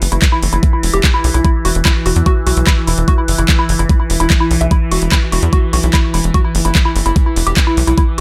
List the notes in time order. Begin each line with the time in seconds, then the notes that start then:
Already playing: E3
0.02 F#1, open hi-hat
0.12 F#1 E4, closed hi-hat
0.22 kick, clap, closed hi-hat
0.32 E4
0.43 F#1, open hi-hat
0.53 F#1 E4, closed hi-hat
0.63 kick, closed hi-hat
0.73 E4
0.83 E1, open hi-hat
0.94 E1 G4, closed hi-hat
1.04 kick, clap, closed hi-hat
1.14 E4
1.24 B1, open hi-hat
1.34 B1 E4, closed hi-hat
1.45 E4, kick, closed hi-hat
1.65 E1 F#4, open hi-hat
1.75 E1, closed hi-hat
1.85 E4, kick, clap, closed hi-hat
2.06 E1 F#4, open hi-hat
2.16 E2, closed hi-hat
2.26 F#4, kick, closed hi-hat
2.47 B1 F#4, open hi-hat
2.57 B1, closed hi-hat
2.67 E4, kick, clap, closed hi-hat
2.87 E1 E4, open hi-hat
2.98 E1, closed hi-hat
3.08 F#4, kick, closed hi-hat
3.18 E4
3.28 F#1, open hi-hat
3.38 F#1 E4, closed hi-hat
3.49 kick, clap, closed hi-hat
3.59 E4
3.69 F#1, open hi-hat
3.79 F#1 E4, closed hi-hat
3.89 kick, closed hi-hat
4.00 E4
4.10 E1, open hi-hat
4.20 E1 E4, closed hi-hat
4.30 kick, clap, closed hi-hat
4.40 E4
4.51 B1, open hi-hat
4.61 B1 E5, closed hi-hat
4.71 E4, kick, closed hi-hat
4.91 E1 F#4, open hi-hat
5.02 E1, closed hi-hat
5.12 E4, kick, clap, closed hi-hat
5.32 E1 F#4, open hi-hat
5.43 E2, closed hi-hat
5.53 F#4, kick, closed hi-hat
5.73 B1 F#4, open hi-hat
5.83 B1, closed hi-hat
5.94 E4, kick, clap, closed hi-hat
6.14 E1 E4, open hi-hat
6.24 E1, closed hi-hat
6.34 F#4, kick, closed hi-hat
6.45 E4
6.55 F#1, open hi-hat
6.65 F#1 E4, closed hi-hat
6.75 kick, clap, closed hi-hat
6.85 E4
6.96 F#1, open hi-hat
7.06 F#1 E4, closed hi-hat
7.16 kick, closed hi-hat
7.26 E4
7.36 E1, open hi-hat
7.47 E1 G4, closed hi-hat
7.57 kick, clap, closed hi-hat
7.67 E4
7.77 B1, open hi-hat
7.87 B1 E4, closed hi-hat
7.98 E4, kick, closed hi-hat